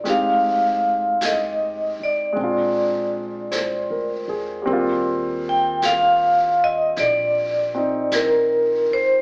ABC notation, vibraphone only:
X:1
M:4/4
L:1/8
Q:"Swing" 1/4=52
K:Eb
V:1 name="Vibraphone"
f2 e d4 z | z g f e d2 B c |]